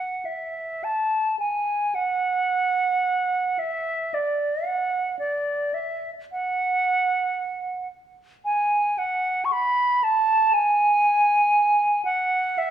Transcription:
Already playing: F#5
0.25 E5
0.84 A5
1.39 G#5
1.95 F#5
3.59 E5
4.14 D5
4.65 F#5
5.19 D5
5.74 E5
6.32 F#5
8.45 G#5
8.98 F#5
9.45 C#6
9.52 B5
10.04 A5
10.53 G#5
12.05 F#5
12.58 E5

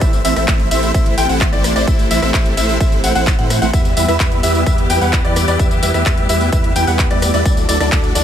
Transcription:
0.01 A1 C3 E3 A3 E4 E5, kick, closed hi-hat, tambourine
0.13 closed hi-hat, tambourine
0.25 A1 A3 C4 E4 C5 E5, open hi-hat, tambourine
0.36 A1 A3 C4 E4 C5 E5, cross-stick, closed hi-hat, tambourine
0.48 A1 A3 E5, kick, clap, closed hi-hat, tambourine
0.60 closed hi-hat
0.71 A1 A3 C4 E4 C5 E5, open hi-hat, tambourine
0.83 closed hi-hat, tambourine
0.94 A1 A3 C4 E4 C5 E5, kick, closed hi-hat, tambourine
1.06 closed hi-hat
1.18 A1 A3 C4 E4 C5 G5, open hi-hat, tambourine
1.29 A1 A3 C4 E4 C5 F#5, closed hi-hat, tambourine
1.41 kick, clap, closed hi-hat, tambourine
1.53 A1 A3 C4 E4 C5 D5, closed hi-hat
1.64 cross-stick, open hi-hat, tambourine
1.76 A1 A3 C4 E4 C5 D5, closed hi-hat, tambourine
1.87 A1 A3 C4 E4 C5 E5, kick, closed hi-hat, tambourine
1.99 closed hi-hat, tambourine
2.11 A1 A3 C4 E4 C5 E5, open hi-hat, tambourine
2.22 A1 A3 C4 E4 C5 E5, cross-stick, closed hi-hat, tambourine
2.34 A1 A3 E5, kick, clap, closed hi-hat, tambourine
2.46 closed hi-hat
2.57 A1 A3 C4 E4 C5 E5, open hi-hat, tambourine
2.69 closed hi-hat, tambourine
2.80 A1 E5, kick, closed hi-hat, tambourine
2.92 closed hi-hat
3.04 A1 A3 C4 E4 C5 F#5, open hi-hat, tambourine
3.15 A1 A3 C4 E4 C5 F#5, closed hi-hat, tambourine
3.27 kick, clap, closed hi-hat, tambourine
3.39 A2 A3 C4 E4 C5 F#5, closed hi-hat
3.50 cross-stick, open hi-hat, tambourine
3.62 A1 A3 C4 E4 C5 F#5, closed hi-hat, tambourine
3.73 E2 G3 B3 E4 G4 B4 E5, kick, closed hi-hat, tambourine
3.85 closed hi-hat, tambourine
3.97 E2 G3 B3 E4 B4 E5, open hi-hat, tambourine
4.08 E2 G3 B3 E4 B4 E5, cross-stick, closed hi-hat, tambourine
4.20 E2 B3 E4 B4 E5, kick, clap, closed hi-hat, tambourine
4.32 closed hi-hat
4.43 E2 G3 B3 E4 B4 E5, open hi-hat, tambourine
4.55 closed hi-hat, tambourine
4.66 E2 G3 B3 E4 B4 E5, kick, closed hi-hat, tambourine
4.78 closed hi-hat
4.90 E2 G3 B3 E4 B4 G5, open hi-hat, tambourine
5.01 E2 G3 B3 E4 B4 F#5, closed hi-hat, tambourine
5.13 kick, clap, closed hi-hat, tambourine
5.24 E2 G3 B3 E4 B4 D5, closed hi-hat
5.36 cross-stick, open hi-hat, tambourine
5.48 E2 G3 B3 E4 B4 D5, closed hi-hat, tambourine
5.59 E2 G3 A3 B3 E4 B4 E5, kick, closed hi-hat, tambourine
5.71 closed hi-hat, tambourine
5.83 E2 G3 B3 E4 B4 E5, open hi-hat, tambourine
5.94 E2 G3 B3 E4 B4 E5, cross-stick, closed hi-hat, tambourine
6.06 E2 E5, kick, clap, closed hi-hat, tambourine
6.18 closed hi-hat
6.29 E2 G3 B3 E4 B4 E5, open hi-hat, tambourine
6.41 closed hi-hat, tambourine
6.52 E2 G3 B3 E4 B4 E5, kick, closed hi-hat, tambourine
6.64 closed hi-hat
6.76 E2 G3 B3 E4 B4 G5, open hi-hat, tambourine
6.87 E2 G3 B3 E4 B4 F#5, closed hi-hat, tambourine
6.99 kick, clap, closed hi-hat, tambourine
7.11 E2 G3 B3 E4 B4 D5, closed hi-hat
7.22 cross-stick, open hi-hat, tambourine
7.34 E2 G3 B3 E4 B4 D5, closed hi-hat, tambourine
7.45 D2 F#3 D4 E4 F#4 A4 D5, kick, closed hi-hat, tambourine
7.57 closed hi-hat, tambourine
7.69 D2 F#3 D4 E4 A4 D5, open hi-hat, tambourine
7.80 D2 F#3 D4 E4 A4 D5, cross-stick, closed hi-hat, tambourine
7.92 D2 F#3 D4 E4 A4 D5, kick, clap, closed hi-hat, tambourine
8.04 closed hi-hat
8.15 D2 F#3 D4 E4 A4 D5, open hi-hat, tambourine

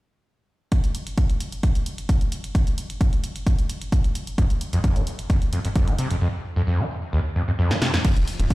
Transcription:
0.72 kick, closed hi-hat
0.84 closed hi-hat
0.95 closed hi-hat
1.07 closed hi-hat
1.18 kick, closed hi-hat
1.30 closed hi-hat
1.40 closed hi-hat
1.52 closed hi-hat
1.63 kick, closed hi-hat
1.75 closed hi-hat
1.86 closed hi-hat
1.98 closed hi-hat
2.09 kick, closed hi-hat
2.21 closed hi-hat
2.32 closed hi-hat
2.44 closed hi-hat
2.55 kick, closed hi-hat
2.67 closed hi-hat
2.78 closed hi-hat
2.90 closed hi-hat
3.01 kick, closed hi-hat
3.13 closed hi-hat
3.24 closed hi-hat
3.36 closed hi-hat
3.47 kick, closed hi-hat
3.59 closed hi-hat
3.69 closed hi-hat
3.82 closed hi-hat
3.92 kick, closed hi-hat
4.04 closed hi-hat
4.15 closed hi-hat
4.27 closed hi-hat
4.38 F2, kick, closed hi-hat
4.50 closed hi-hat
4.61 closed hi-hat
4.73 F2, closed hi-hat
4.84 F2, kick, closed hi-hat
4.96 F3, closed hi-hat
5.07 closed hi-hat
5.19 closed hi-hat
5.30 D#2, kick, closed hi-hat
5.42 closed hi-hat
5.53 F2, closed hi-hat
5.65 F2, closed hi-hat
5.76 F2, kick, closed hi-hat
5.88 F3, closed hi-hat
5.98 C3, closed hi-hat
6.11 F2, closed hi-hat
6.21 F2
6.56 F2
6.67 F2
6.79 F3
7.13 D#2
7.36 F2
7.48 F2
7.59 F2
7.71 F3, snare
7.82 C3, snare
7.94 F2, snare
8.04 F2 F3, kick, closed hi-hat, crash
8.17 F1, closed hi-hat
8.28 open hi-hat
8.40 F1 F2, closed hi-hat
8.50 F2, kick, closed hi-hat

